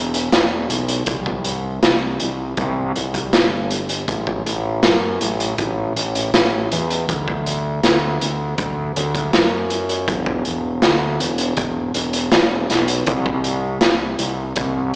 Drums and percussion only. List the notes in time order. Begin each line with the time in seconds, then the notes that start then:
0.14 closed hi-hat
0.32 snare, closed hi-hat
0.70 closed hi-hat
0.88 closed hi-hat
1.06 kick, closed hi-hat
1.26 kick
1.44 closed hi-hat
1.83 snare, closed hi-hat
2.20 closed hi-hat
2.57 kick, closed hi-hat
2.96 closed hi-hat
3.14 kick, closed hi-hat
3.33 snare, closed hi-hat
3.71 closed hi-hat
3.89 closed hi-hat
4.08 kick, closed hi-hat
4.27 kick
4.46 closed hi-hat
4.83 snare, closed hi-hat
5.21 closed hi-hat
5.40 closed hi-hat
5.58 kick, closed hi-hat
5.96 closed hi-hat
6.15 closed hi-hat
6.34 snare, closed hi-hat
6.72 closed hi-hat
6.90 closed hi-hat
7.09 kick, closed hi-hat
7.28 kick
7.46 closed hi-hat
7.83 snare, closed hi-hat
8.21 closed hi-hat
8.58 kick, closed hi-hat
8.96 closed hi-hat
9.15 kick, closed hi-hat
9.33 snare, closed hi-hat
9.70 closed hi-hat
9.89 closed hi-hat
10.08 kick, closed hi-hat
10.26 kick
10.45 closed hi-hat
10.82 snare, closed hi-hat
11.20 closed hi-hat
11.38 closed hi-hat
11.57 kick, closed hi-hat
11.94 closed hi-hat
12.13 closed hi-hat
12.32 snare, closed hi-hat
12.70 snare, closed hi-hat
12.88 closed hi-hat
13.06 kick, closed hi-hat
13.26 kick
13.44 closed hi-hat
13.81 snare, closed hi-hat
14.19 closed hi-hat
14.56 kick, closed hi-hat